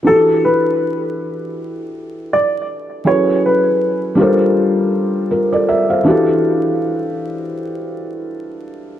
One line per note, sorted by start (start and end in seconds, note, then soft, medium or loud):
0.03 3.00 E3 medium
0.03 3.01 D4 medium
0.03 3.02 F#4 medium
0.07 3.02 G4 medium
0.07 0.40 A4 medium
0.07 3.03 A4 medium
0.45 0.99 B4 medium
2.33 2.66 D5 medium
3.04 4.17 F#3 medium
3.04 4.18 C#4 medium
3.04 4.18 E4 medium
3.04 4.18 G#4 medium
3.04 4.17 A4 medium
3.04 4.19 B4 medium
3.04 3.40 C#5 medium
3.46 4.00 B4 medium
4.15 6.00 G3 medium
4.15 6.01 D4 medium
4.15 5.28 F4 medium
4.15 5.29 A4 medium
4.20 5.29 A#4 medium
4.20 5.30 C5 medium
5.31 5.51 F4 soft
5.31 5.51 A#4 medium
5.53 5.68 A4 medium
5.53 5.67 D5 medium
5.69 5.89 A#4 medium
5.69 5.89 E5 medium
5.90 6.26 C5 soft
5.90 6.25 F5 medium
6.03 8.99 E3 medium
6.03 8.99 D4 medium
6.03 8.99 F#4 medium
6.08 8.99 G4 medium
6.08 8.99 A4 medium